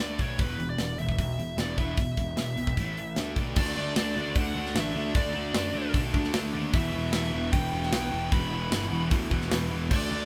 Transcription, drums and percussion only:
0.19 kick, open hi-hat
0.39 kick, open hi-hat
0.60 open hi-hat
0.78 snare, open hi-hat
0.99 open hi-hat
1.09 kick
1.19 kick, open hi-hat
1.39 open hi-hat
1.58 snare, open hi-hat
1.78 kick, open hi-hat
1.97 kick, open hi-hat
2.17 kick, open hi-hat
2.37 snare, open hi-hat
2.57 open hi-hat
2.67 kick
2.77 kick, open hi-hat
2.97 open hi-hat
3.16 snare, open hi-hat
3.36 kick, open hi-hat
3.56 kick, crash
3.96 snare, open hi-hat
4.35 kick, open hi-hat
4.66 snare
4.76 snare, open hi-hat
5.14 kick, open hi-hat
5.54 snare, open hi-hat
5.94 kick, open hi-hat
6.14 kick
6.24 snare
6.34 snare, open hi-hat
6.74 kick, open hi-hat
7.13 snare, open hi-hat
7.24 snare
7.53 kick, open hi-hat
7.83 snare
7.93 snare, open hi-hat
8.32 kick, open hi-hat
8.72 snare, open hi-hat
8.82 snare
9.11 kick, open hi-hat
9.31 kick
9.42 snare
9.52 snare, open hi-hat
9.91 kick, crash

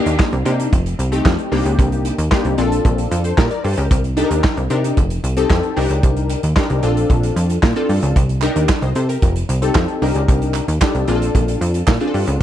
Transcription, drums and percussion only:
0.06 closed hi-hat
0.20 kick, snare, clap
0.33 closed hi-hat
0.46 closed hi-hat
0.60 closed hi-hat
0.73 kick, closed hi-hat
0.86 closed hi-hat
0.99 closed hi-hat
1.12 closed hi-hat
1.25 kick, snare, clap
1.39 closed hi-hat
1.52 open hi-hat
1.66 closed hi-hat
1.79 kick, closed hi-hat
1.92 closed hi-hat
2.05 closed hi-hat
2.18 closed hi-hat
2.32 kick, snare, clap
2.45 closed hi-hat
2.58 closed hi-hat
2.72 closed hi-hat
2.85 kick, closed hi-hat
2.98 closed hi-hat
3.12 closed hi-hat
3.24 closed hi-hat
3.38 kick, snare, clap
3.51 closed hi-hat
3.64 open hi-hat
3.77 closed hi-hat
3.91 kick, closed hi-hat
4.04 closed hi-hat
4.17 closed hi-hat
4.31 closed hi-hat
4.44 kick, snare, clap
4.57 closed hi-hat
4.70 closed hi-hat
4.84 closed hi-hat
4.97 kick, closed hi-hat
5.10 closed hi-hat
5.24 closed hi-hat
5.37 closed hi-hat
5.50 kick, snare, clap
5.63 closed hi-hat
5.77 open hi-hat
5.90 closed hi-hat
6.03 kick, closed hi-hat
6.17 closed hi-hat
6.30 closed hi-hat
6.43 closed hi-hat
6.57 kick, snare, clap
6.70 closed hi-hat
6.83 closed hi-hat
6.97 closed hi-hat
7.10 kick, closed hi-hat
7.23 closed hi-hat
7.37 closed hi-hat
7.50 closed hi-hat
7.63 kick, snare, clap
7.76 closed hi-hat
7.89 open hi-hat
8.03 closed hi-hat
8.16 kick, closed hi-hat
8.29 closed hi-hat
8.41 clap, closed hi-hat
8.56 closed hi-hat
8.69 kick, snare, clap
8.82 closed hi-hat
8.95 closed hi-hat
9.09 closed hi-hat
9.22 kick, closed hi-hat
9.36 closed hi-hat
9.49 closed hi-hat
9.62 closed hi-hat
9.75 kick, snare, clap
9.88 closed hi-hat
10.02 open hi-hat
10.15 closed hi-hat
10.28 kick, closed hi-hat
10.42 closed hi-hat
10.54 clap, closed hi-hat
10.68 closed hi-hat
10.81 kick, snare, clap
10.95 closed hi-hat
11.08 closed hi-hat
11.22 closed hi-hat
11.35 kick, closed hi-hat
11.48 closed hi-hat
11.61 closed hi-hat
11.74 closed hi-hat
11.87 kick, snare, clap
12.00 closed hi-hat
12.14 open hi-hat
12.27 closed hi-hat

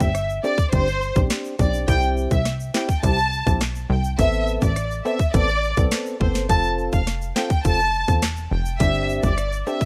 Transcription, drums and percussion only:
0.00 kick, shaker
0.15 cross-stick, closed hi-hat, shaker
0.30 shaker
0.44 high timbale, shaker
0.58 kick, shaker
0.72 kick, closed hi-hat, shaker
0.88 shaker
1.02 shaker
1.16 kick, shaker
1.30 cross-stick, snare, clap, closed hi-hat, shaker
1.45 shaker
1.59 kick, shaker
1.74 shaker
1.88 kick, closed hi-hat, shaker
2.02 shaker
2.17 shaker
2.31 kick, shaker
2.45 cross-stick, snare, closed hi-hat, shaker
2.60 shaker
2.74 snare, clap, shaker
2.89 kick, shaker
3.03 kick, closed hi-hat, shaker
3.18 shaker
3.32 shaker
3.47 kick, shaker
3.61 cross-stick, snare, clap, closed hi-hat, shaker
3.75 shaker
4.04 shaker
4.19 kick, closed hi-hat, shaker
4.33 shaker
4.48 shaker
4.62 kick, shaker
4.76 cross-stick, closed hi-hat, shaker
4.91 shaker
5.05 high timbale, shaker
5.19 kick, shaker
5.34 kick, closed hi-hat, shaker
5.49 shaker
5.63 shaker
5.77 kick, shaker
5.91 cross-stick, snare, clap, closed hi-hat, shaker
6.06 shaker
6.21 kick
6.35 snare, shaker
6.49 kick, closed hi-hat, shaker
6.63 shaker
6.79 shaker
6.93 kick, shaker
7.07 cross-stick, snare, closed hi-hat, shaker
7.22 shaker
7.36 snare, clap, shaker
7.50 kick, shaker
7.65 kick, closed hi-hat, shaker
7.80 shaker
7.94 shaker
8.08 kick, shaker
8.22 cross-stick, snare, clap, closed hi-hat, shaker
8.37 shaker
8.66 shaker
8.80 kick, closed hi-hat, shaker
8.94 shaker
9.09 shaker
9.23 kick, shaker
9.38 cross-stick, closed hi-hat, shaker
9.52 shaker
9.67 high timbale, shaker
9.81 kick, shaker

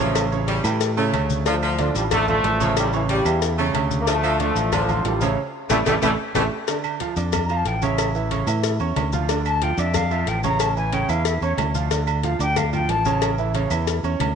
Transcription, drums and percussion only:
0.15 cowbell, high conga, low agogo, claves, maracas
0.32 high conga, maracas
0.48 cowbell, high conga, low agogo, maracas
0.64 high conga, low agogo, claves, maracas
0.81 cowbell, high conga, maracas
0.97 high conga, low agogo, maracas
1.13 cowbell, high conga, low agogo, claves, maracas
1.30 high conga, maracas
1.46 cowbell, low agogo, maracas
1.63 high conga, low agogo, claves, maracas
1.79 cowbell, high conga, maracas
1.95 high conga, low agogo, maracas
2.11 cowbell, high conga, low conga, low agogo, claves, maracas
2.28 high conga, low conga, low agogo, maracas
2.44 cowbell, high conga, low timbale, maracas
2.60 high conga, low agogo, maracas
2.77 cowbell, high conga, low agogo, claves, maracas
2.93 high conga, maracas
3.09 cowbell, high conga, low agogo, maracas
3.26 low agogo, claves, maracas
3.42 cowbell, high conga, maracas
3.58 high conga, low agogo, maracas
3.75 cowbell, high conga, low agogo, claves, maracas
3.91 high conga, maracas
4.07 cowbell, low agogo, maracas
4.24 high conga, low agogo, claves, maracas
4.40 cowbell, high conga, maracas
4.56 low agogo, maracas
4.72 cowbell, high conga, low conga, low agogo, claves, maracas
4.89 high conga, low conga, low agogo, maracas
5.05 cowbell, high conga, low timbale, maracas
5.21 high conga, low agogo, maracas
5.70 cowbell, high conga, high timbale, claves, maracas
5.86 cowbell, high conga, high timbale, claves, maracas
6.02 cowbell, high conga, high timbale, claves, maracas
6.35 cowbell, high conga, high timbale, claves, maracas
6.68 cowbell, high conga, low agogo, maracas
6.84 high conga, low agogo, claves, maracas
7.00 cowbell, high conga, maracas
7.16 high conga, low agogo, maracas
7.32 cowbell, high conga, low conga, low agogo, claves, maracas
7.49 high conga, low agogo, maracas
7.65 cowbell, high conga, maracas
7.82 high conga, low agogo, maracas
7.98 cowbell, high conga, low agogo, claves, maracas
8.15 high conga, maracas
8.31 cowbell, high conga, low agogo, maracas
8.47 high conga, low agogo, claves, maracas
8.63 cowbell, high conga, maracas
8.80 high conga, low agogo, maracas
8.96 cowbell, high conga, low timbale, low agogo, claves, maracas
9.12 high conga, maracas
9.29 cowbell, low agogo, maracas
9.45 low agogo, claves, maracas
9.61 cowbell, high conga, maracas
9.78 high conga, low agogo, maracas
9.94 cowbell, high conga, low conga, low agogo, claves, maracas
10.11 high conga, low agogo, maracas
10.27 cowbell, high conga, maracas
10.44 high conga, low agogo, maracas
10.60 cowbell, high conga, low agogo, claves, maracas
10.76 high conga, maracas
10.93 cowbell, high conga, low agogo, maracas
11.09 low agogo, claves, maracas
11.25 cowbell, high conga, maracas
11.42 high conga, low agogo, maracas
11.58 cowbell, high conga, low timbale, low agogo, claves, maracas
11.74 high conga, maracas
11.91 cowbell, low agogo, maracas
12.07 high conga, low agogo, claves, maracas
12.23 cowbell, high conga, maracas
12.40 low agogo, maracas
12.56 cowbell, high conga, low conga, low agogo, claves, maracas
12.73 high conga, low conga, low agogo, maracas
12.89 cowbell, high conga, low timbale, maracas
13.05 high conga, low agogo, maracas
13.22 cowbell, high conga, low agogo, claves, maracas
13.38 high conga, maracas
13.54 cowbell, high conga, low agogo, maracas
13.71 low agogo, claves, maracas
13.87 cowbell, maracas
14.04 high conga, low agogo, maracas
14.20 cowbell, high conga, low timbale, low agogo, claves, maracas

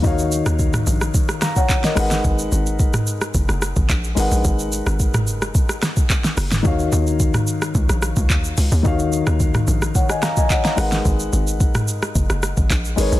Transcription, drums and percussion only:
0.04 kick, shaker
0.19 shaker
0.32 shaker
0.46 cross-stick, shaker
0.59 kick, shaker
0.74 cross-stick, mid tom, shaker
0.87 shaker
1.01 cross-stick, shaker
1.14 kick, shaker
1.29 cross-stick, shaker
1.42 cross-stick, snare, shaker
1.56 kick, shaker
1.69 kick, clap, shaker
1.84 snare, shaker
1.97 cross-stick, open hi-hat, shaker
2.11 snare, shaker
2.24 kick, shaker
2.39 shaker
2.52 shaker
2.66 shaker
2.79 kick, shaker
2.94 cross-stick, mid tom, shaker
3.07 shaker
3.21 cross-stick, shaker
3.34 kick, shaker
3.49 cross-stick, shaker
3.62 cross-stick, shaker
3.76 kick, shaker
3.89 kick, clap, shaker
4.04 shaker
4.17 open hi-hat, shaker
4.31 shaker
4.45 kick, shaker
4.59 shaker
4.72 shaker
4.87 cross-stick, shaker
5.00 kick, shaker
5.14 cross-stick, mid tom, shaker
5.27 shaker
5.42 cross-stick, shaker
5.55 kick, shaker
5.69 cross-stick, shaker
5.82 cross-stick, snare, shaker
5.97 kick, shaker
6.10 kick, clap, shaker
6.24 snare, shaker
6.37 cross-stick, open hi-hat, shaker
6.51 snare, mid tom, shaker
6.65 kick, shaker
6.79 shaker
6.92 shaker
7.07 shaker
7.20 kick, shaker
7.34 cross-stick, mid tom, shaker
7.47 shaker
7.62 cross-stick, shaker
7.75 kick, shaker
7.89 cross-stick, shaker
8.02 cross-stick, shaker
8.16 kick, shaker
8.30 kick, clap, shaker
8.44 shaker
8.58 open hi-hat, shaker
8.72 shaker
8.85 kick, shaker
8.99 shaker
9.12 shaker
9.27 cross-stick, shaker
9.40 kick, shaker
9.54 cross-stick, mid tom, shaker
9.67 shaker
9.82 cross-stick, shaker
9.95 kick, shaker
10.10 cross-stick, shaker
10.23 cross-stick, snare, shaker
10.37 kick, shaker
10.50 kick, clap, shaker
10.65 snare, shaker
10.78 cross-stick, open hi-hat, shaker
10.92 snare, shaker
11.05 kick, shaker
11.20 shaker
11.33 shaker
11.47 shaker
11.60 kick, shaker
11.75 cross-stick, mid tom, shaker
11.88 shaker
12.02 cross-stick, shaker
12.15 kick, shaker
12.30 cross-stick, shaker
12.43 cross-stick, shaker
12.57 kick, shaker
12.70 kick, clap, shaker
12.85 shaker
12.98 open hi-hat, shaker
13.12 shaker

